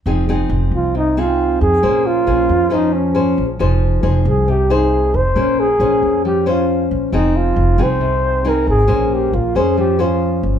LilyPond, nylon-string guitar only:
\new Staff \with { instrumentName = "Nylon-string guitar" } { \time 4/4 \key f \minor \tempo 4 = 136 << { <c' ees' aes'>8 <c' ees' aes'>2 <c' ees' aes'>4. | <des' aes' c''>4 <des' aes' c''>4 <des' aes' c''>4 <des' aes' c''>8 r8 | <ees' aes' c''>4 <ees' aes' c''>4 r8 <ees' aes' c''>4. | <des' aes' c''>8 r8 <des' aes' c''>4. <des' aes' c''>4. |
<c' ees' aes'>4. <c' ees' aes'>4. <c' ees' aes'>4 | <des' aes' c''>4 r8 <des' aes' c''>4 <des' aes' c''>4. | } \\ { f2 c2 | bes2 f2 | f2 c2 | bes2 f2 |
f2 c2 | bes2 f2 | } >> }